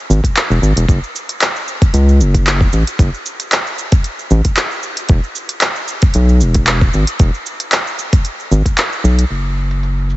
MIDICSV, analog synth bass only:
0, 0, Header, 1, 2, 480
1, 0, Start_track
1, 0, Tempo, 526316
1, 807, Time_signature, 4, 2, 24, 8
1, 9272, End_track
2, 0, Start_track
2, 0, Title_t, "Analog synth bass"
2, 0, Program_c, 0, 38
2, 90, Note_on_c, 0, 32, 92
2, 186, Note_off_c, 0, 32, 0
2, 459, Note_on_c, 0, 28, 99
2, 540, Note_off_c, 0, 28, 0
2, 567, Note_on_c, 0, 32, 103
2, 664, Note_off_c, 0, 32, 0
2, 697, Note_on_c, 0, 28, 99
2, 779, Note_off_c, 0, 28, 0
2, 808, Note_on_c, 0, 30, 105
2, 905, Note_off_c, 0, 30, 0
2, 1766, Note_on_c, 0, 37, 93
2, 2010, Note_on_c, 0, 30, 83
2, 2023, Note_off_c, 0, 37, 0
2, 2444, Note_off_c, 0, 30, 0
2, 2490, Note_on_c, 0, 33, 85
2, 2586, Note_off_c, 0, 33, 0
2, 2729, Note_on_c, 0, 30, 96
2, 2825, Note_off_c, 0, 30, 0
2, 3929, Note_on_c, 0, 33, 91
2, 4025, Note_off_c, 0, 33, 0
2, 4645, Note_on_c, 0, 28, 99
2, 4743, Note_off_c, 0, 28, 0
2, 5609, Note_on_c, 0, 35, 90
2, 5849, Note_on_c, 0, 28, 81
2, 5862, Note_off_c, 0, 35, 0
2, 6283, Note_off_c, 0, 28, 0
2, 6331, Note_on_c, 0, 32, 78
2, 6426, Note_off_c, 0, 32, 0
2, 6563, Note_on_c, 0, 28, 100
2, 6662, Note_off_c, 0, 28, 0
2, 7765, Note_on_c, 0, 32, 89
2, 7863, Note_off_c, 0, 32, 0
2, 8245, Note_on_c, 0, 35, 83
2, 8430, Note_off_c, 0, 35, 0
2, 8485, Note_on_c, 0, 30, 82
2, 9272, Note_off_c, 0, 30, 0
2, 9272, End_track
0, 0, End_of_file